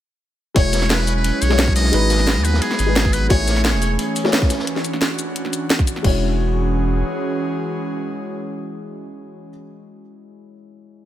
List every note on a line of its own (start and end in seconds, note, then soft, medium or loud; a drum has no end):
0.54 1.32 E1 loud
0.54 3.27 F#3 medium
0.54 1.48 G#3 loud
0.54 1.92 C#4 medium
0.54 1.48 E4 medium
0.54 1.92 E4 medium
0.54 1.48 F#4 medium
0.54 4.46 G#4 medium
0.54 0.92 C#5 loud
0.54 1.49 C#5 loud
0.54 kick loud
0.54 closed hi-hat medium
0.54 closed hi-hat loud
0.73 snare medium
0.73 closed hi-hat medium
0.73 open hi-hat medium
0.73 shaker medium
0.82 snare soft
0.82 closed hi-hat soft
0.90 1.16 B4 loud
0.90 snare loud
0.90 closed hi-hat medium
1.00 closed hi-hat soft
1.07 closed hi-hat medium
1.07 shaker medium
1.16 1.44 B4 loud
1.24 closed hi-hat medium
1.42 1.92 B1 medium
1.42 1.75 C#5 loud
1.42 closed hi-hat medium
1.42 shaker medium
1.49 1.90 G#3 medium
1.49 1.91 E4 medium
1.49 1.91 F#4 medium
1.49 1.92 C#5 medium
1.49 snare medium
1.58 snare loud
1.58 closed hi-hat medium
1.67 kick loud
1.67 snare soft
1.76 2.46 D#5 loud
1.76 snare medium
1.76 closed hi-hat medium
1.76 shaker medium
1.84 snare medium
1.92 2.38 G#1 loud
1.92 2.85 G#3 loud
1.92 3.29 B3 medium
1.92 2.85 D#4 loud
1.92 3.29 D#4 medium
1.92 2.86 F#4 medium
1.92 2.86 B4 loud
1.92 closed hi-hat medium
1.92 closed hi-hat loud
2.10 snare medium
2.10 closed hi-hat medium
2.10 shaker medium
2.19 snare soft
2.19 closed hi-hat soft
2.27 snare loud
2.27 closed hi-hat medium
2.36 2.60 D#2 medium
2.36 snare soft
2.45 2.63 B4 loud
2.45 closed hi-hat medium
2.45 shaker medium
2.53 snare medium
2.61 3.15 G#4 loud
2.61 closed hi-hat medium
2.71 snare soft
2.79 3.29 G#1 medium
2.79 closed hi-hat medium
2.79 shaker medium
2.86 3.27 G#3 medium
2.86 3.28 D#4 medium
2.86 3.28 F#4 medium
2.86 3.29 B4 loud
2.96 snare loud
2.96 closed hi-hat medium
2.96 closed hi-hat loud
3.05 kick loud
3.05 snare soft
3.13 3.30 B4 loud
3.13 closed hi-hat medium
3.13 shaker medium
3.29 3.75 A1 medium
3.29 6.02 E3 medium
3.29 4.22 A3 loud
3.29 4.49 A3 medium
3.29 6.02 C#4 medium
3.29 4.22 E4 medium
3.29 4.23 G#4 loud
3.29 3.62 C#5 loud
3.29 4.23 C#5 loud
3.29 kick loud
3.29 closed hi-hat medium
3.47 snare medium
3.47 closed hi-hat medium
3.47 open hi-hat medium
3.47 shaker medium
3.56 snare soft
3.56 closed hi-hat soft
3.64 3.96 C#5 medium
3.64 snare loud
3.64 closed hi-hat medium
3.73 3.97 E1 medium
3.73 closed hi-hat soft
3.82 closed hi-hat medium
3.82 shaker medium
3.99 closed hi-hat medium
4.16 closed hi-hat medium
4.16 shaker medium
4.24 4.49 A3 medium
4.24 4.49 E4 medium
4.24 4.49 G#4 medium
4.24 4.49 C#5 loud
4.24 snare medium
4.24 snare soft
4.33 snare loud
4.33 closed hi-hat medium
4.42 kick loud
4.42 snare soft
4.50 6.03 D4 medium
4.50 6.03 F#4 medium
4.50 snare medium
4.50 closed hi-hat medium
4.50 shaker medium
4.59 snare medium
4.67 closed hi-hat medium
4.76 snare soft
4.84 closed hi-hat medium
4.84 shaker medium
4.93 snare soft
5.02 snare loud
5.02 closed hi-hat medium
5.19 closed hi-hat medium
5.19 shaker medium
5.36 closed hi-hat medium
5.45 snare soft
5.53 closed hi-hat medium
5.53 shaker medium
5.70 snare loud
5.70 closed hi-hat medium
5.79 kick loud
5.79 snare soft
5.79 shaker soft
5.87 closed hi-hat medium
5.87 shaker medium
5.96 snare soft
6.03 7.03 E1 loud
6.03 9.49 E3 medium
6.03 9.48 G#3 medium
6.03 9.49 C#4 medium
6.03 9.49 E4 medium
6.03 9.49 F#4 medium
6.03 9.50 F#4 medium
6.03 9.49 G#4 medium
6.03 9.51 C#5 medium
6.03 kick loud
6.03 crash medium